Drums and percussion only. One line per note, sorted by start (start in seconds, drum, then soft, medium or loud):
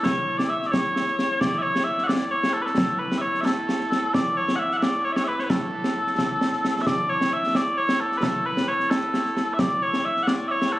0.06 concert bass drum medium
0.06 snare loud
0.39 snare medium
0.62 snare soft
0.74 concert bass drum soft
0.74 snare medium
0.96 snare medium
1.07 snare soft
1.19 snare medium
1.41 concert bass drum medium
1.41 snare medium
1.76 snare medium
1.98 snare soft
2.09 snare medium
2.44 snare medium
2.66 snare soft
2.78 concert bass drum medium
2.78 snare loud
3.12 snare medium
3.35 snare soft
3.46 snare medium
3.69 snare medium
3.80 snare soft
3.92 snare medium
4.14 concert bass drum medium
4.14 snare medium
4.48 snare medium
4.71 snare soft
4.82 snare medium
5.16 snare medium
5.39 snare soft
5.50 concert bass drum medium
5.50 snare loud
5.84 snare medium
6.07 snare soft
6.18 concert bass drum soft
6.18 snare medium
6.41 snare medium
6.53 snare soft
6.65 snare medium
6.76 snare soft
6.87 concert bass drum medium
6.87 snare loud
7.21 snare medium
7.43 snare soft
7.55 snare medium
7.89 snare medium
8.12 snare soft
8.23 concert bass drum medium
8.23 snare medium
8.57 snare medium
8.80 snare soft
8.91 snare medium
9.14 snare medium
9.25 snare soft
9.37 snare medium
9.59 concert bass drum medium
9.59 snare loud
9.94 snare medium
10.16 snare soft
10.27 snare medium
10.62 snare medium